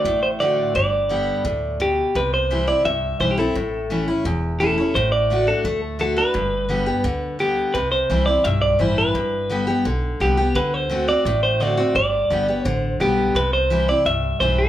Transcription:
Already playing: clean electric guitar D5
0.05 upright bass A1, steel-string acoustic guitar A2
0.23 clean electric guitar C5
0.40 steel-string acoustic guitar D3 A3 C4 F#4, clean electric guitar D5
0.75 upright bass G1, steel-string acoustic guitar G2, clean electric guitar D5
1.09 steel-string acoustic guitar D3 G3 B3 G4
1.45 upright bass D2, steel-string acoustic guitar A2
1.80 steel-string acoustic guitar B2, clean electric guitar G4
2.15 upright bass C2, steel-string acoustic guitar C3, clean electric guitar B4
2.34 clean electric guitar C5
2.51 steel-string acoustic guitar E3 G3 C4 E4
2.67 steel-string acoustic guitar C4 E4, clean electric guitar D5
2.85 upright bass C2, steel-string acoustic guitar G2, clean electric guitar E5
3.20 upright bass B1, steel-string acoustic guitar E3 G3 C4 E4, clean electric guitar C5
3.31 clean electric guitar G4
3.38 steel-string acoustic guitar C4 E4, clean electric guitar A4
3.55 upright bass A1, steel-string acoustic guitar A2
3.90 steel-string acoustic guitar E3 A3 C#4 E4
4.08 steel-string acoustic guitar C#4 E4
4.25 upright bass E1, steel-string acoustic guitar E2
4.60 steel-string acoustic guitar E3 A3 C#4 E4, clean electric guitar A4
4.78 steel-string acoustic guitar C#4 E4
4.95 upright bass A1, steel-string acoustic guitar A2, clean electric guitar C5
5.12 clean electric guitar D5
5.30 steel-string acoustic guitar D3 A3 D4 F#4
5.47 steel-string acoustic guitar D4 F#4, clean electric guitar A4
5.64 upright bass D2, steel-string acoustic guitar A3
5.99 steel-string acoustic guitar D3 A3 D4 F#4, clean electric guitar A4
6.17 steel-string acoustic guitar D4 F#4, clean electric guitar B4
6.34 upright bass G1, steel-string acoustic guitar G2
6.69 steel-string acoustic guitar D3 G3 B3 G4
6.86 steel-string acoustic guitar B3 G4
7.04 upright bass D2, steel-string acoustic guitar D3
7.39 steel-string acoustic guitar D3 G3 B3 G4, clean electric guitar G4
7.74 upright bass C2, steel-string acoustic guitar C3, clean electric guitar B4
7.92 clean electric guitar C5
8.10 upright bass C2, steel-string acoustic guitar E3 G3 C4 E4
8.26 steel-string acoustic guitar C4 E4, clean electric guitar D5
8.44 upright bass B1, steel-string acoustic guitar G2, clean electric guitar E5
8.62 clean electric guitar D5
8.79 upright bass A1, steel-string acoustic guitar E3 G3 C4 E4, clean electric guitar C5
8.98 clean electric guitar B4
9.14 upright bass G1, steel-string acoustic guitar G2
9.50 steel-string acoustic guitar D3 G3 B3 G4
9.67 steel-string acoustic guitar B3 G4
9.85 upright bass B1, steel-string acoustic guitar D3
10.20 upright bass C2, steel-string acoustic guitar D3 G3 B3 G4, clean electric guitar G4
10.37 steel-string acoustic guitar B3 G4
10.55 upright bass D2, steel-string acoustic guitar D3, clean electric guitar B4
10.74 clean electric guitar C5
10.90 steel-string acoustic guitar D3 A3 C4 F#4
11.08 steel-string acoustic guitar C4 F#4, clean electric guitar D5
11.25 upright bass A1, steel-string acoustic guitar A2
11.43 clean electric guitar C5
11.60 steel-string acoustic guitar D3 A3 C4 F#4, clean electric guitar D5
11.77 steel-string acoustic guitar C4 F#4
11.95 upright bass G1, steel-string acoustic guitar G2, clean electric guitar D5
12.30 upright bass G1, steel-string acoustic guitar D3 G3 B3 G4
12.48 steel-string acoustic guitar B3 G4
12.65 upright bass A1, steel-string acoustic guitar D3, clean electric guitar C5
13.00 upright bass B1, steel-string acoustic guitar D3 G3 B3 G4, clean electric guitar G4
13.35 upright bass C2, steel-string acoustic guitar C3, clean electric guitar B4
13.53 clean electric guitar C5
13.70 steel-string acoustic guitar E3 G3 C4 E4
13.88 steel-string acoustic guitar C4 E4, clean electric guitar D5
14.05 upright bass C2, steel-string acoustic guitar G2, clean electric guitar E5
14.40 upright bass B1, steel-string acoustic guitar E3 G3 C4 E4, clean electric guitar C5
14.58 clean electric guitar A4

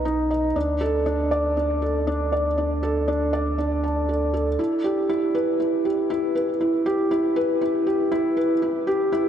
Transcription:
Already playing: sub bass B1, felt piano D#4 B4 D#5
0.05 felt piano D#4
0.31 felt piano D#5
0.56 sub bass D2, felt piano D4
0.81 felt piano A4
1.06 felt piano D4
1.31 felt piano D5
1.57 felt piano D4
1.82 felt piano A4
2.07 felt piano D4
2.32 felt piano D5
2.58 felt piano D4
2.83 felt piano A4
3.08 felt piano D4
3.33 felt piano D5
3.58 felt piano D4
3.84 felt piano A5
4.09 felt piano A4
4.34 felt piano A4
4.59 felt piano E4
4.84 felt piano G4
5.09 felt piano E4
5.35 felt piano B4
5.60 felt piano E4
5.85 felt piano G4
6.10 felt piano E4
6.35 felt piano B4
6.61 felt piano E4
6.86 felt piano G4
7.11 felt piano E4
7.36 felt piano B4
7.61 felt piano E4
7.87 felt piano G4
8.12 felt piano E4
8.37 felt piano B4
8.62 felt piano E4
8.87 felt piano G4
9.12 felt piano E4

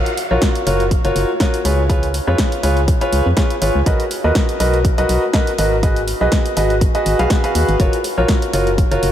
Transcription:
0.06 closed hi-hat
0.17 open hi-hat
0.31 fm bass A#1, grand piano F4 F#4 A#4 C#5
0.42 kick, snare, closed hi-hat
0.55 closed hi-hat
0.67 fm bass F#1, grand piano F4 F#4 A#4 C#5, open hi-hat
0.80 closed hi-hat
0.91 kick, closed hi-hat
1.05 fm bass F#1, grand piano F4 F#4 A#4 C#5, closed hi-hat
1.16 fm bass F#1, open hi-hat
1.40 grand piano F4 F#4 A#4 C#5, kick, snare, closed hi-hat
1.54 closed hi-hat
1.65 fm bass C#2, grand piano F4 G#4 B4 C#5, open hi-hat
1.89 grand piano F4 G#4 B4 C#5, kick, closed hi-hat
2.03 closed hi-hat
2.14 open hi-hat
2.27 fm bass F2, grand piano F4 G#4 B4 C#5
2.38 kick, snare, closed hi-hat
2.52 closed hi-hat
2.63 fm bass C#2, grand piano F4 G#4 B4 C#5, open hi-hat
2.77 closed hi-hat
2.88 kick, closed hi-hat
3.01 grand piano F4 G#4 B4 C#5, closed hi-hat
3.13 fm bass C#2, open hi-hat
3.26 fm bass F2
3.37 grand piano F4 G#4 B4 C#5, kick, snare, closed hi-hat
3.50 closed hi-hat
3.62 fm bass G#1, grand piano F4 G#4 B4 C#5, open hi-hat
3.75 fm bass C#2
3.86 fm bass B1, grand piano F#4 A#4 B4 D#5, kick, closed hi-hat
4.00 closed hi-hat
4.11 open hi-hat
4.24 fm bass D#2, grand piano F#4 A#4 B4 D#5
4.35 kick, snare, closed hi-hat
4.49 closed hi-hat
4.60 fm bass B1, grand piano F#4 A#4 B4 D#5, open hi-hat
4.74 closed hi-hat
4.85 kick, closed hi-hat
4.98 fm bass B1, grand piano F#4 A#4 B4 D#5, closed hi-hat
5.09 fm bass B1, open hi-hat
5.33 grand piano F#4 A#4 B4 D#5, kick, snare, closed hi-hat
5.47 closed hi-hat
5.58 fm bass G#1, grand piano F#4 A#4 B4 D#5, open hi-hat
5.83 grand piano F#4 G#4 B4 D#5, kick, closed hi-hat
5.96 closed hi-hat
6.08 open hi-hat
6.21 fm bass B1, grand piano F#4 G#4 B4 D#5
6.32 kick, snare, closed hi-hat
6.46 closed hi-hat
6.57 fm bass G#1, grand piano F#4 G#4 B4 D#5, open hi-hat
6.70 closed hi-hat
6.81 kick, closed hi-hat
6.95 grand piano F#4 G#4 B4 D#5, closed hi-hat
7.06 fm bass G#1, open hi-hat
7.19 fm bass B1, grand piano F#4 G#4 B4 F5, closed hi-hat
7.30 kick, snare, closed hi-hat
7.44 grand piano F#4 G#4 B4 F5, closed hi-hat
7.55 fm bass D#2, open hi-hat
7.69 fm bass G#1, closed hi-hat
7.80 fm bass F#1, grand piano F4 F#4 A#4 C#5, kick, closed hi-hat
7.93 closed hi-hat
8.04 open hi-hat
8.18 fm bass A#1, grand piano F4 F#4 A#4 C#5
8.28 kick, snare, closed hi-hat
8.42 closed hi-hat
8.53 fm bass F#1, grand piano F4 F#4 A#4 C#5, open hi-hat
8.67 closed hi-hat
8.78 kick, closed hi-hat
8.91 fm bass F#1, grand piano F4 F#4 A#4 C#5, closed hi-hat
9.03 fm bass F#1, open hi-hat

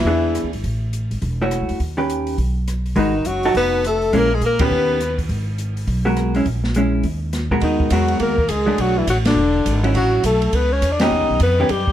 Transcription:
Already playing: tenor saxophone E3, alto saxophone E4
0.04 upright bass E2, hollow-body jazz guitar E3 B3 D4 G#4
0.35 cross-stick, closed hi-hat
0.44 upright bass D2
0.53 upright bass G#1, open hi-hat
0.64 upright bass A1, kick, open hi-hat
0.93 closed hi-hat
1.11 upright bass G#1, open hi-hat
1.22 upright bass E1, kick, open hi-hat
1.42 hollow-body jazz guitar A3 E4 F#4 C#5
1.51 cross-stick, closed hi-hat
1.61 upright bass C#2
1.69 upright bass E2, open hi-hat
1.80 upright bass D#2, kick, open hi-hat
1.97 hollow-body jazz guitar D#3 C#4 G4 B4
2.10 closed hi-hat
2.27 open hi-hat
2.38 upright bass B1, kick, open hi-hat
2.68 cross-stick, closed hi-hat
2.86 open hi-hat
2.96 upright bass G#1, tenor saxophone D#3, hollow-body jazz guitar G#3 D#4 F#4 B4, alto saxophone D#4, kick, open hi-hat
3.25 upright bass F#1, tenor saxophone F#3, alto saxophone F#4, closed hi-hat
3.43 hollow-body jazz guitar D#4 F#4 A4, open hi-hat
3.54 upright bass F1, tenor saxophone B3, alto saxophone B4, kick, open hi-hat
3.84 tenor saxophone A3, alto saxophone A4, cross-stick, closed hi-hat
4.02 open hi-hat
4.13 upright bass A#1, hollow-body jazz guitar G#3 C#4 E4, tenor saxophone A#3, kick, open hi-hat
4.18 alto saxophone A#4
4.34 tenor saxophone G#3, alto saxophone G#4
4.41 upright bass A#2, tenor saxophone A#3, closed hi-hat
4.46 alto saxophone A#4
4.59 hollow-body jazz guitar D#3 C#4 G4 B4, tenor saxophone B3, kick, ride
4.65 alto saxophone B4
4.71 upright bass D#2
5.01 cross-stick, closed hi-hat
5.18 kick, open hi-hat
5.29 upright bass G#1, kick, open hi-hat
5.58 closed hi-hat
5.77 open hi-hat
5.87 upright bass B1, kick, open hi-hat
6.05 hollow-body jazz guitar G#3 B3 F#4 A#4
6.17 cross-stick, closed hi-hat
6.35 hollow-body jazz guitar G#3 C#4 E4, open hi-hat
6.45 upright bass A#1, kick, open hi-hat
6.64 snare
6.74 hollow-body jazz guitar G#3 C#4 E4, closed hi-hat
7.03 upright bass D#2, kick, open hi-hat
7.33 cross-stick, snare, closed hi-hat
7.51 upright bass A#1, hollow-body jazz guitar G#3 B3 F#4 A#4, kick
7.61 upright bass D#2, tenor saxophone D#3, alto saxophone D#4, kick, ride
7.80 kick
7.90 upright bass E2, tenor saxophone F#3, hollow-body jazz guitar G#3 B3 F#4 A#4, alto saxophone F#4, kick, hi-hat pedal, ride
8.08 ride
8.19 upright bass D#2, tenor saxophone A#3, alto saxophone A#4, kick, ride
8.38 kick
8.48 upright bass C#2, tenor saxophone G#3, alto saxophone G#4, kick, hi-hat pedal, ride
8.66 hollow-body jazz guitar F#3 A3 D4
8.78 upright bass B1, tenor saxophone F#3, alto saxophone F#4, kick, ride
8.98 tenor saxophone E3, alto saxophone E4
9.07 upright bass A1, tenor saxophone F#3, alto saxophone F#4, kick, hi-hat pedal, ride
9.25 tenor saxophone D3, alto saxophone D4, snare, ride
9.36 upright bass E1
9.65 upright bass G#1, kick, hi-hat pedal, ride
9.84 hollow-body jazz guitar F#3 C#4 E4, ride
9.95 upright bass A1, tenor saxophone F#3, alto saxophone F#4, kick, ride
10.23 upright bass B1, tenor saxophone A3, alto saxophone A4, kick, hi-hat pedal, ride
10.42 ride
10.52 upright bass C#2, tenor saxophone B3, alto saxophone B4, kick, ride
10.73 tenor saxophone C#4, alto saxophone C#5
10.82 upright bass E2, kick, hi-hat pedal, ride
10.92 tenor saxophone D4, alto saxophone D5
10.99 hollow-body jazz guitar D#3 B3 C#4 G4, tenor saxophone D#4, alto saxophone D#5, snare, ride
11.11 upright bass D#2
11.21 upright bass C#2
11.30 upright bass B1
11.40 upright bass F2, tenor saxophone B3, alto saxophone B4, kick, hi-hat pedal, ride
11.60 hollow-body jazz guitar D#3 B3 C#4 G4
11.69 upright bass F#2, tenor saxophone G3, alto saxophone G4, kick, ride
11.88 kick

